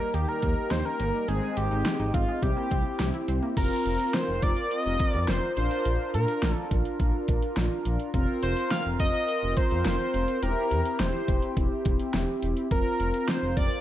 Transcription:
Already playing: A#3 D#4 G4 A#4
0.00 G3
0.14 D#2 D#3 G4, closed hi-hat
0.28 G3 A#4
0.42 D#2 A#3, kick, closed hi-hat
0.71 D#2 D#4 C5, snare, closed hi-hat
0.85 C#4 A#4
1.00 G1 A#3, closed hi-hat
1.14 G3
1.28 G#1 D#3 G#3 C4 D#4 G#4, closed hi-hat
1.43 G#3
1.57 G#1 C4 G4, closed hi-hat
1.71 G#1 D#4
1.85 snare, closed hi-hat
2.00 G#1 D#4
2.14 G#1 C4 F4, kick, closed hi-hat
2.28 G#3
2.42 C2 G3 C4 E4 G4, kick, closed hi-hat
2.57 A#3
2.71 C2 C4, kick, closed hi-hat
3.00 C2 G4, snare, closed hi-hat
3.14 E4
3.28 C2 C4, closed hi-hat
3.42 A#3
3.57 F1 C4 F4 A#4, kick, closed hi-hat, crash
3.85 F1, closed hi-hat
4.00 closed hi-hat
4.14 C5, snare, closed hi-hat
4.28 F1
4.43 F1 D5, kick, closed hi-hat
4.57 closed hi-hat
4.71 D#5, closed hi-hat
4.85 F1
4.99 kick, closed hi-hat
5.09 D5
5.14 F2, closed hi-hat
5.28 F1 C5, snare, closed hi-hat
5.57 A#1 D4 F4 A#4 C5, closed hi-hat
5.71 closed hi-hat
5.85 A#1, closed hi-hat
6.14 A#2 A#4, closed hi-hat
6.28 closed hi-hat
6.42 A#1, snare, closed hi-hat
6.52 A4
6.71 A#1, kick, closed hi-hat
6.85 closed hi-hat
7.00 A#1, kick, closed hi-hat
7.28 A#1, kick, closed hi-hat
7.42 closed hi-hat
7.57 A#1, snare, closed hi-hat
7.85 A#1, closed hi-hat
8.00 closed hi-hat
8.14 F1 C4 F4 A#4, kick, closed hi-hat
8.43 F1 C5, closed hi-hat
8.57 closed hi-hat
8.71 F5, snare, closed hi-hat
8.85 F1
9.00 F1 D#5, kick, closed hi-hat
9.14 closed hi-hat
9.28 closed hi-hat
9.43 F1
9.57 C5, kick, closed hi-hat
9.71 F2, closed hi-hat
9.85 F1, snare, closed hi-hat
10.14 F1, closed hi-hat
10.28 closed hi-hat
10.43 E1 C4 E4 G4 A#4, closed hi-hat
10.71 E2, closed hi-hat
10.85 closed hi-hat
11.00 E1 C5, snare, closed hi-hat
11.28 E1, kick, closed hi-hat
11.42 closed hi-hat
11.57 E1, kick, closed hi-hat
11.85 E1, kick, closed hi-hat
12.00 closed hi-hat
12.14 E1, snare, closed hi-hat
12.43 E1, closed hi-hat
12.57 closed hi-hat
12.71 F1 C4 F4 A#4, kick, closed hi-hat
13.00 F1, closed hi-hat
13.14 closed hi-hat
13.28 C5, snare, closed hi-hat
13.43 F1
13.57 F1 D5, kick, closed hi-hat
13.71 closed hi-hat

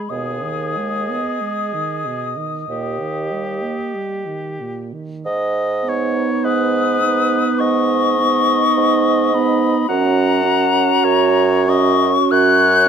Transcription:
Already playing: B5
0.10 D#2 B2 G#4 D#5 D#6
0.43 D#3
0.77 G#3
1.10 B3
1.41 G#3
1.73 D#3
2.06 B2
2.37 D#3
2.68 D#2 A#2 G4
3.00 D#3
3.32 G3
3.62 A#3
3.95 G3
4.27 D#3
4.60 A#2
4.93 D#3
5.25 G#2 D#5
5.84 B3 D#4
5.89 C#5
6.45 G#2 B4 D#6
7.02 B3 D#4
7.59 G#2 D#5 C#6
8.19 B3 D#4
8.77 G#2
9.34 B3 D#4 B5
9.88 F#2 C#4 F#4 F#5 A#5
10.45 C#4 F#4
11.04 F#2 C#5
11.66 C#4 F#4 D#5 C#6
12.31 F#2 C#5 F#6

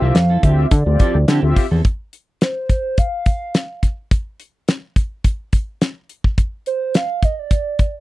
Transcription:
Already playing: C4 F4 G4 E5
0.01 C2 F3 C4 E4 G4 F5
0.15 F2, muted clean electric guitar stroke, snare, closed hi-hat
0.30 F3 C4 E4 A4
0.43 D2 F3 C4 E4 F4 G4 E5, kick, closed hi-hat
0.58 muted clean electric guitar stroke
0.66 E5
0.71 D3 D5, kick, closed hi-hat
0.86 D2 C4 F4 G4 D5, muted clean electric guitar stroke
0.99 F3 C4 E4 A4, kick, closed hi-hat
1.15 D2, muted clean electric guitar stroke
1.28 D3 F3 C4 E4 G4, snare, closed hi-hat
1.43 D2 C4 F4 G4 E5, muted clean electric guitar stroke
1.56 muted clean electric guitar stroke, kick, open hi-hat
1.71 E2 F3 C4 E4 A4
1.85 kick, closed hi-hat
2.13 closed hi-hat
2.41 C5, snare, closed hi-hat
2.69 kick, closed hi-hat
2.98 F5, kick, closed hi-hat
3.26 kick, closed hi-hat
3.54 snare, closed hi-hat
3.83 kick, closed hi-hat
4.11 kick, closed hi-hat
4.40 closed hi-hat
4.68 snare, closed hi-hat
4.96 kick, closed hi-hat
5.24 kick, closed hi-hat
5.53 kick, closed hi-hat
5.81 snare, closed hi-hat
6.09 closed hi-hat
6.24 kick
6.38 kick, closed hi-hat
6.66 C5, closed hi-hat
6.94 F5, snare, closed hi-hat
7.23 D#5, kick, closed hi-hat
7.39 D5
7.51 kick, closed hi-hat
7.79 kick, closed hi-hat

